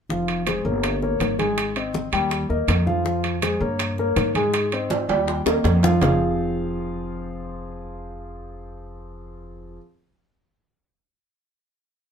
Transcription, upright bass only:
0.09 F1
0.65 G1
1.20 G#1
2.12 D#2
2.49 D#2
2.68 F2
3.60 G2
4.16 G#2
5.09 D#2
5.46 D#2
5.64 F2
6.01 F1

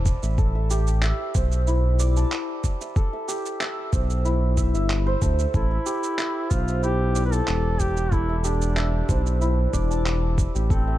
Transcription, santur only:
Already playing: E4 G4 A4 C5 D5 E5 A5
0.23 E5
0.38 A4
0.55 E5
0.71 G4
1.03 E5
1.35 C5
1.67 E4
2.00 D5
2.17 A5
2.81 E5
2.96 A4
3.13 E5
3.28 G4
3.61 E5
3.93 C5
4.25 E4
4.57 E5
4.74 E5
5.07 C5
5.22 A4
5.39 E5
5.54 A4
5.71 E5
5.86 G4
6.19 E5
6.51 C5
6.83 E4
7.15 D5
7.32 A5
7.97 G4
8.12 A4
8.29 E5
8.44 G4
8.76 E5
9.09 C5
9.41 E4
9.73 D5
9.91 A5
10.55 G4
10.70 A4
10.88 E5

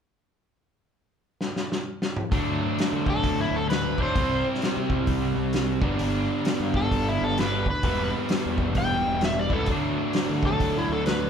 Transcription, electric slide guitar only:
3.10 A4
3.41 E4
3.56 A4
3.70 B4
4.02 C5
6.77 A4
7.09 E4
7.24 A4
7.41 B4
7.70 B4
8.78 G5
9.25 E5
9.39 D5
9.53 A4
10.46 A4
10.78 E4
10.92 A4
11.06 B4

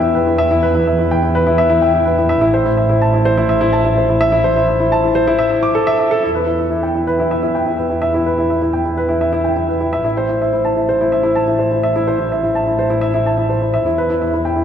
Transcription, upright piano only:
Already playing: E4 B4 E5 G5
0.02 E4
0.15 B4
0.27 E4
0.38 E5
0.51 E4
0.63 B4
0.75 E4
0.87 E5
0.99 E4
1.11 G5
1.23 E4
1.35 B4
1.47 E4
1.58 E5
1.70 E4
1.82 G5
1.93 E4
2.05 B4
2.18 E4
2.29 E5
2.41 E4
2.54 C5
2.65 E4
2.77 E5
2.89 E4
3.02 A5
3.14 E4
3.25 C5
3.37 E4
3.49 E5
3.61 E4
3.73 A5
3.85 E4
3.97 C5
4.09 E4
4.21 E5
4.32 E4
4.44 C5
4.56 E4
4.68 E5
4.80 E4
4.92 A5
5.04 E4
5.15 C5
5.27 E4
5.39 E5
5.51 E5
5.63 D6
5.75 A4
5.87 E5
5.99 E5
6.11 A4
6.23 E4
6.35 B4
6.47 E4
6.59 E5
6.70 E4
6.83 G5
6.95 E4
7.07 B4
7.20 E4
7.31 E5
7.43 E4
7.55 G5
7.66 E4
7.78 B4
7.90 E4
8.02 E5
8.14 E4
8.26 B4
8.38 E4
8.50 E5
8.62 E4
8.73 G5
8.85 E4
8.97 B4
9.09 E4
9.21 E5
9.33 E4
9.44 G5
9.57 E4
9.69 B4
9.81 E4
9.93 E5
10.04 E4
10.17 C5
10.29 E4
10.42 E5
10.53 E4
10.65 A5
10.76 E4
10.89 C5
11.01 E4
11.12 E5
11.23 E4
11.36 A5
11.48 E4
11.59 C5
11.71 E4
11.83 E5
11.96 E4
12.07 C5
12.20 E4
12.32 E5
12.43 E4
12.55 A5
12.67 E4
12.79 C5
12.90 E4
13.01 E5
13.14 E4
13.26 A5
13.38 E4
13.50 C5
13.62 E4
13.74 E5
13.86 E4
13.98 B4
14.10 E4
14.22 E5
14.34 E4
14.45 G5
14.56 E4

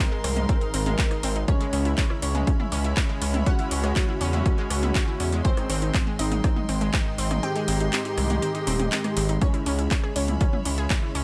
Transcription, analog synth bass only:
0.24 C2
0.74 G#1
1.23 G#1
1.73 C#2
2.22 C#2
2.72 C#2
3.22 C#2
3.71 C#2
4.21 E2
4.70 C#2
5.20 E2
5.69 G#1
6.19 G#1
6.69 G#1
7.18 G#1
7.68 G#1
8.17 C2
8.67 D#1
9.17 G#1
9.66 C#2
10.16 C#2
10.66 C#2
11.15 C#2

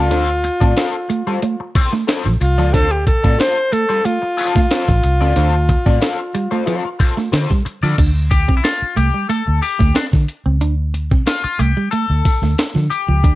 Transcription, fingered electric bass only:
Already playing: C#2
0.11 D2
0.62 A2
2.26 A1
2.41 C2
2.58 C#2
2.74 D2
3.24 A2
4.89 A1
5.04 C2
5.21 C#2
5.37 D2
5.86 A2
7.33 D3
7.66 muted fingered electric bass stroke
7.83 D3
7.99 D2
8.49 C2
8.82 muted fingered electric bass stroke
8.97 C2
9.48 D2
9.81 D2
10.13 D3
10.46 C#2
10.61 D2
11.12 C2
11.44 muted fingered electric bass stroke
11.60 C2
12.10 D2
12.42 D2
12.76 D3
13.09 C#2
13.24 D2

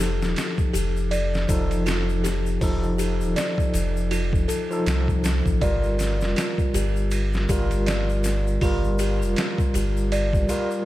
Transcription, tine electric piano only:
Already playing: F3 D#4 A4
1.48 F3 D#4 A4
2.61 F3 D#4 A4
4.70 F3 D#4 A4
5.62 G3 F4 A#4
7.49 G3 F4 A#4
8.62 G3 F4 A#4
10.48 G3 F4 A#4

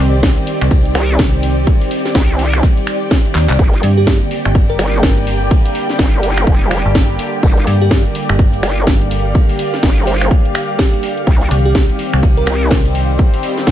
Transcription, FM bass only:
0.00 C2
0.61 C2
1.19 C2
3.35 D#2
3.49 C2
3.83 G2
4.46 G1
5.03 G1
6.85 G1
7.67 G2
8.29 G1
8.87 G1
11.51 C2
12.13 C2
12.71 C2

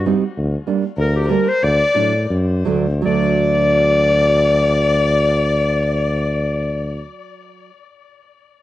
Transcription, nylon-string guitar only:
0.06 G3 C4 D#4
0.67 G3 A#3 D4
1.29 G3 A#3 D4
1.94 F#3 A3 D4
2.65 F#3 A3 D4
3.02 F#3 A3
3.07 D4

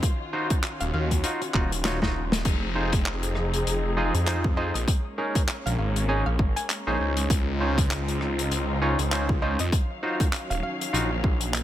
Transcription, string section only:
Already playing: F4
0.03 D#3 C#4 F#4
2.45 F3 C4 D#4 G#4
4.88 G#3 A#3 C#4
7.30 C#3 C4 D#4 F4
9.72 D#3 F#3 C#4 F5

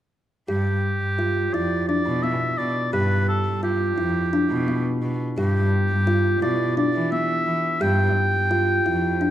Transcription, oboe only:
0.49 G4
1.54 D5
1.88 D5
2.23 E5
2.58 D5
2.93 B4
3.29 A4
3.64 G4
5.38 G4
6.42 D5
6.77 D5
7.12 E5
7.81 G5

